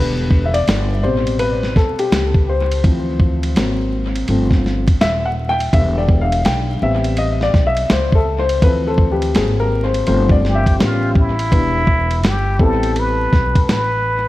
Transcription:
Already playing: upright bass E1, grand piano D3 G3 B3 B4
0.31 kick
0.45 grand piano E5
0.54 grand piano D5, ride
0.67 upright bass G1, snare, hi-hat pedal, ride
1.03 upright bass A1, grand piano B2 C3 G3 C5
1.27 ride
1.39 grand piano B4, ride
1.63 snare
1.76 grand piano A4, kick, snare
1.99 grand piano G4, ride
2.12 upright bass C#2, snare, hi-hat pedal, ride
2.34 kick
2.49 grand piano C5
2.71 ride
2.84 upright bass D2, grand piano E3 F3 C4, kick, ride
3.20 kick
3.43 ride
3.56 upright bass G#1, grand piano F#3 A#3 C4, snare, hi-hat pedal, ride
4.15 ride
4.28 upright bass G1, grand piano F3 A3 C4, ride
4.51 kick, snare
4.66 snare
4.88 kick, ride
5.01 upright bass D#1, grand piano E5, snare, hi-hat pedal, ride
5.25 grand piano F#5
5.49 grand piano G5
5.60 ride
5.73 upright bass E1, grand piano D3 G3 B3 E5, kick, ride
5.98 grand piano D5
6.09 kick
6.21 grand piano F5
6.32 ride
6.45 upright bass B1, grand piano G5, snare, hi-hat pedal, ride
6.82 upright bass A1, grand piano G3 B3 C4 E5
7.04 ride
7.17 grand piano D#5, ride
7.41 grand piano D5, snare
7.54 upright bass B1, kick, snare
7.67 grand piano E5
7.77 ride
7.90 upright bass C#2, grand piano C5, snare, hi-hat pedal, ride
8.12 grand piano A4, kick
8.39 grand piano C5
8.49 ride
8.62 upright bass D2, grand piano E3 F3 C4 B4, kick, ride
8.87 grand piano A4
8.98 kick
9.12 grand piano G4
9.22 ride
9.35 upright bass G#1, grand piano F#3 A#3 C4 G#4, snare, hi-hat pedal, ride
9.60 grand piano A#4
9.84 grand piano C5
9.94 ride
10.07 upright bass G1, grand piano F3 A3 C4 C5, ride
10.29 grand piano D5, kick
10.45 muted trumpet G4, snare
10.55 grand piano E5
10.66 kick, ride
10.79 upright bass A1, grand piano G3 B3 C#4, muted trumpet F4, snare, hi-hat pedal, ride
11.15 muted trumpet E4, kick
11.39 ride
11.51 upright bass E1, grand piano G3 B3 D4 E4 B4, kick, ride
11.87 kick
12.11 ride
12.23 upright bass G1, snare, hi-hat pedal, ride
12.28 muted trumpet G4
12.59 upright bass A1, grand piano G3 B3 C4 E4 A4, muted trumpet A4, kick
12.83 ride
12.96 muted trumpet B4, ride
13.33 upright bass B1, kick, snare
13.55 kick, ride
13.69 upright bass A1, muted trumpet B4, snare, hi-hat pedal, ride

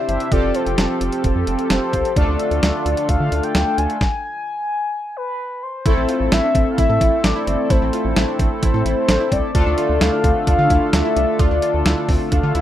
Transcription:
Already playing: analog synth pad C3 C4 D4 E4, analog polysynth D4 E4 G4 C5
0.09 analog synth bass G1, soft synth lead E5, closed hi-hat
0.20 closed hi-hat
0.32 analog synth bass F1, analog synth pad F3 G4 A4, analog polysynth C4 F4 G4 A4, soft synth lead D5, kick, closed hi-hat
0.43 analog synth bass F1
0.55 soft synth lead C5, closed hi-hat
0.66 analog synth bass F1, closed hi-hat
0.78 analog synth bass F1, snare, closed hi-hat
1.01 analog synth bass F1, closed hi-hat
1.12 closed hi-hat
1.24 analog synth bass F1, kick, closed hi-hat
1.36 analog synth bass F2
1.47 analog synth bass F1, closed hi-hat
1.59 closed hi-hat
1.70 analog synth bass F1, soft synth lead C5, snare, closed hi-hat
1.93 analog synth bass C2, kick, closed hi-hat
2.05 closed hi-hat
2.16 analog synth bass D2, analog synth pad D3 D4 F4, analog polysynth A3 D4 F4 A4, soft synth lead D5, kick, closed hi-hat
2.28 analog synth bass D2
2.39 closed hi-hat
2.51 analog synth bass D2, closed hi-hat
2.63 analog synth bass D2, snare, closed hi-hat
2.86 analog synth bass D2, closed hi-hat
2.97 closed hi-hat
3.09 analog synth bass D2, soft synth lead F5, kick, closed hi-hat
3.20 analog synth bass D3
3.32 analog synth bass D2, closed hi-hat
3.43 soft synth lead G5, closed hi-hat
3.55 analog synth bass D2, snare, closed hi-hat
3.78 analog synth bass D2, soft synth lead G#5, closed hi-hat
3.90 closed hi-hat
4.01 kick, snare
5.17 soft synth lead B4
5.63 soft synth lead C5
5.85 analog synth bass A1, analog polysynth A3 C4 E4 A4, analog synth pad A3 C4 E4, synth pluck E4, kick, closed hi-hat
5.97 analog synth bass A1, synth pluck C4
6.09 synth pluck F4, closed hi-hat
6.20 analog synth bass A1
6.32 analog synth bass A1, synth pluck E4, soft synth lead E5, snare, closed hi-hat
6.43 synth pluck D4
6.55 analog synth bass A1, synth pluck C4, kick, closed hi-hat
6.71 soft synth lead F5
6.78 analog synth bass A1, synth pluck E4, soft synth lead E5, kick, closed hi-hat
6.89 analog synth bass A2, synth pluck A4
7.01 analog synth bass A1, synth pluck E4, kick, closed hi-hat
7.24 analog synth bass A1, synth pluck D4, soft synth lead D5, snare, closed hi-hat
7.36 synth pluck E4
7.47 analog synth bass G1, synth pluck C4, closed hi-hat
7.70 analog synth bass A1, synth pluck E4, soft synth lead C5, kick, closed hi-hat
7.82 analog synth bass A1, synth pluck C4
7.93 synth pluck F4, closed hi-hat
8.05 analog synth bass A1
8.16 analog synth bass A1, synth pluck E4, snare, closed hi-hat
8.28 synth pluck D4
8.39 analog synth bass A1, synth pluck C4, kick, closed hi-hat
8.63 analog synth bass A1, synth pluck E4, soft synth lead C5, kick, closed hi-hat
8.74 analog synth bass A2, synth pluck A4
8.85 analog synth bass A1, synth pluck E4, soft synth lead C5, closed hi-hat
9.09 analog synth bass A1, synth pluck D4, snare, closed hi-hat
9.20 synth pluck E4
9.32 analog synth bass C2, synth pluck C4, soft synth lead D5, kick, closed hi-hat
9.55 analog synth bass D2, analog synth pad D3 D4 F4 A4, analog polysynth A3 D4 F4 A4, synth pluck F4, kick, closed hi-hat
9.66 analog synth bass D2, synth pluck D4
9.78 synth pluck F4, closed hi-hat
9.89 analog synth bass D2
10.01 analog synth bass D2, synth pluck E4, soft synth lead F5, snare, closed hi-hat
10.13 synth pluck D4
10.24 analog synth bass D2, synth pluck C4, kick, closed hi-hat
10.47 analog synth bass D2, synth pluck D4, soft synth lead F5, kick, closed hi-hat
10.59 analog synth bass D3, synth pluck F4
10.70 analog synth bass D2, synth pluck E4, kick, closed hi-hat
10.93 analog synth bass D2, synth pluck D4, soft synth lead E5, snare, closed hi-hat
11.05 synth pluck E4
11.16 analog synth bass C2, synth pluck D4, closed hi-hat
11.39 analog synth bass D2, synth pluck F4, soft synth lead D5, kick, closed hi-hat
11.51 analog synth bass D2, synth pluck D4
11.62 synth pluck F4, closed hi-hat
11.74 analog synth bass D2
11.86 analog synth bass D2, synth pluck E4, snare, closed hi-hat
11.97 synth pluck D4
12.09 analog synth bass D2, synth pluck C4, kick, open hi-hat
12.32 analog synth bass D2, synth pluck D4, soft synth lead F5, kick, closed hi-hat
12.43 analog synth bass D3, synth pluck F4
12.55 analog synth bass D2, synth pluck E4, soft synth lead F5, closed hi-hat

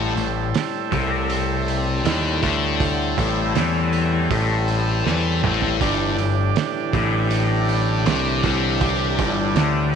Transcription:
Already playing: picked electric bass A1, distorted electric guitar A2, harmonium A2 G3, transistor combo organ A3 C4 G4 A4 E5
0.15 picked electric bass A1, distorted electric guitar A2, open hi-hat
0.54 snare, open hi-hat
0.92 picked electric bass C2, distorted electric guitar C3, kick, open hi-hat
1.30 open hi-hat
1.68 open hi-hat
2.05 picked electric bass D#2, distorted electric guitar D#3, snare, open hi-hat
2.43 picked electric bass D2, distorted electric guitar D3, kick, open hi-hat
2.80 kick, open hi-hat
3.18 picked electric bass A1, distorted electric guitar A2, kick, open hi-hat
3.55 picked electric bass E2, distorted electric guitar E3, snare, open hi-hat
3.93 open hi-hat
4.30 picked electric bass A1, distorted electric guitar A2, kick, open hi-hat
4.68 open hi-hat
5.06 picked electric bass E2, distorted electric guitar E3, snare
5.43 picked electric bass A1, distorted electric guitar A2, mid tom
5.62 floor tom
5.80 picked electric bass G1, distorted electric guitar G2, harmonium A2 E3, transistor combo organ D3 G3 D4 D5, kick, open hi-hat
6.18 picked electric bass G1, distorted electric guitar G2, open hi-hat
6.56 snare, open hi-hat
6.93 picked electric bass A1, distorted electric guitar A2, kick, open hi-hat
7.31 open hi-hat
7.69 open hi-hat
8.06 picked electric bass C2, distorted electric guitar C3, snare, open hi-hat
8.44 picked electric bass C2, distorted electric guitar C3, kick, open hi-hat
8.81 kick, open hi-hat
9.19 picked electric bass G1, distorted electric guitar G2, kick, open hi-hat
9.55 picked electric bass D2, distorted electric guitar D3, snare, open hi-hat

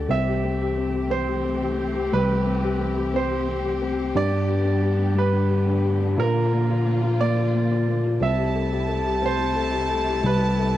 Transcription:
Already playing: felt piano D4 A4, grand piano D5
0.09 tine electric piano C2, string section E3 A3 C4 G4, felt piano C4, grand piano E5
0.27 felt piano G4
0.44 felt piano C4
0.61 felt piano G4
0.77 felt piano C4
0.93 felt piano G4
1.10 felt piano C4, grand piano C5
1.27 felt piano G4
1.44 felt piano C4
1.61 felt piano G4
1.78 felt piano C4
1.95 felt piano G4
2.12 tine electric piano C2, felt piano G3, grand piano B4
2.29 felt piano G4
2.46 felt piano C4
2.63 felt piano G4
2.80 felt piano C4
2.96 felt piano G4
3.14 felt piano C4, grand piano C5
3.30 felt piano G4
3.48 felt piano C4
3.64 felt piano G4
3.82 felt piano C4
3.98 felt piano G4
4.15 tine electric piano G2, string section D3 G3 B3, felt piano G3, grand piano D5
4.31 felt piano D4
4.48 felt piano G4
4.65 felt piano D4
4.82 felt piano G4
4.98 felt piano D4
5.15 felt piano G3, grand piano B4
5.33 felt piano D4
5.49 felt piano G4
5.66 felt piano D4
5.84 felt piano G4
6.01 felt piano D4
6.18 tine electric piano A#2, string section F3 A#3 F4, felt piano A#3, grand piano A#4
6.35 felt piano F4
6.52 felt piano A#3
6.69 felt piano F4
6.86 felt piano A#3
7.02 felt piano F4
7.20 felt piano A#3, grand piano D5
7.37 felt piano F4
7.54 felt piano A#3
7.71 felt piano F4
7.88 felt piano A#3
8.06 felt piano F4
8.20 tine electric piano C2, string section C3 G3 A3 E4, felt piano C4, grand piano E5, violin section A5
8.38 felt piano G4
8.55 felt piano A4
8.71 felt piano G4
8.88 felt piano A4
9.05 felt piano G4
9.22 felt piano C4, grand piano C5
9.38 felt piano G4
9.55 felt piano A4
9.72 felt piano G4
9.89 felt piano A4
10.07 felt piano G4
10.24 tine electric piano C2, felt piano G3, grand piano B4
10.41 felt piano G4
10.59 felt piano A4

